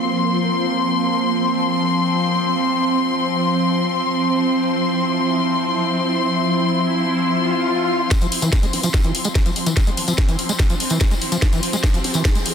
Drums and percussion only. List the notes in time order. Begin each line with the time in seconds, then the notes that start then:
8.11 kick, snare, closed hi-hat, tambourine
8.21 closed hi-hat, tambourine
8.32 open hi-hat
8.42 closed hi-hat, tambourine
8.53 kick, snare, closed hi-hat, tambourine
8.63 closed hi-hat, tambourine
8.73 open hi-hat
8.83 closed hi-hat, tambourine
8.94 kick, snare, closed hi-hat, tambourine
9.03 closed hi-hat, tambourine
9.15 open hi-hat
9.24 closed hi-hat, tambourine
9.35 kick, snare, closed hi-hat, tambourine
9.46 closed hi-hat, tambourine
9.56 open hi-hat
9.66 closed hi-hat, tambourine
9.77 kick, snare, closed hi-hat, tambourine
9.87 closed hi-hat, tambourine
9.97 open hi-hat
10.08 closed hi-hat, tambourine
10.18 kick, snare, closed hi-hat, tambourine
10.28 closed hi-hat, tambourine
10.39 open hi-hat
10.49 closed hi-hat, tambourine
10.59 kick, snare, closed hi-hat, tambourine
10.69 closed hi-hat, tambourine
10.80 open hi-hat
10.90 closed hi-hat, tambourine
11.00 kick, snare, closed hi-hat, tambourine
11.11 closed hi-hat, tambourine
11.22 open hi-hat
11.32 closed hi-hat, tambourine
11.42 kick, snare, closed hi-hat, tambourine
11.53 closed hi-hat, tambourine
11.63 open hi-hat
11.73 closed hi-hat, tambourine
11.84 kick, snare, closed hi-hat
11.94 closed hi-hat, tambourine
12.04 open hi-hat
12.14 closed hi-hat, tambourine
12.25 kick, snare, closed hi-hat, tambourine
12.35 closed hi-hat, tambourine
12.46 open hi-hat